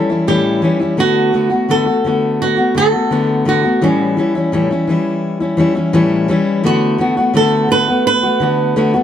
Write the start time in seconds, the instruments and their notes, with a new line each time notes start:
Already playing: steel-string acoustic guitar G3 C#4, nylon-string guitar A4
0.10 steel-string acoustic guitar G3 C#4 E4
0.27 steel-string acoustic guitar A2 E3 G3 C#4 E4, nylon-string guitar G4
0.62 steel-string acoustic guitar E3 G3 C#4 E4
0.80 steel-string acoustic guitar G3 C#4 E4
0.97 steel-string acoustic guitar D3 A3 B3 F#4, nylon-string guitar F#4
1.33 steel-string acoustic guitar D3 A3 B3 F#4
1.50 steel-string acoustic guitar A3 B3 F#4
1.69 steel-string acoustic guitar D3 A3 B3 F#4, nylon-string guitar A4
1.86 steel-string acoustic guitar A3 B3 F#4
2.04 steel-string acoustic guitar D3 A3 B3 F#4
2.42 nylon-string guitar F#4
2.57 steel-string acoustic guitar A3 B3 F#4
2.75 steel-string acoustic guitar D3 A3 B3 F#4, nylon-string guitar A4
2.92 steel-string acoustic guitar A3 B3 F#4
3.11 steel-string acoustic guitar D3 A3 B3 F#4
3.45 steel-string acoustic guitar D3 A3 B3 F#4, nylon-string guitar F#4
3.63 steel-string acoustic guitar A3 B3 F#4
3.81 steel-string acoustic guitar A2 E3 G3 C#4 E4, nylon-string guitar C#4
4.17 steel-string acoustic guitar E3 G3 C#4 E4
4.35 steel-string acoustic guitar G3 C#4 E4
4.52 steel-string acoustic guitar A2 E3 G3 C#4 E4
4.71 steel-string acoustic guitar G3 C#4 E4
4.87 steel-string acoustic guitar E3 G3 C#4 E4
5.40 steel-string acoustic guitar G3 C#4 E4
5.57 steel-string acoustic guitar E3 G3 C#4 E4
5.75 steel-string acoustic guitar G3 C#4 E4
5.93 steel-string acoustic guitar A2 E3 G3 C#4 E4
6.28 steel-string acoustic guitar E3 G3 C#4 E4
6.64 steel-string acoustic guitar D3 A3 B3 F#4, nylon-string guitar F#4
6.98 steel-string acoustic guitar D3 A3 B3 F#4
7.17 steel-string acoustic guitar A3 B3 F#4
7.34 steel-string acoustic guitar D3 A3 B3 F#4, nylon-string guitar A4
7.68 steel-string acoustic guitar D3 A3 B3 F#4, nylon-string guitar B4
7.88 steel-string acoustic guitar A3 B3 F#4
8.07 nylon-string guitar B4
8.23 steel-string acoustic guitar A3 B3 F#4
8.40 steel-string acoustic guitar D3 A3 B3 F#4
8.76 steel-string acoustic guitar D3 A3 B3 F#4
8.94 steel-string acoustic guitar A3 B3 F#4